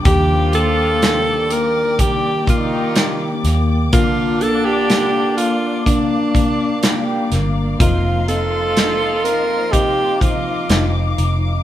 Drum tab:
HH |xxxxxxxx|xxxxxxxx|xxxxxxxx|
SD |--o---oo|--o---oo|--o---o-|
BD |o---oo--|o---oo--|o---oo--|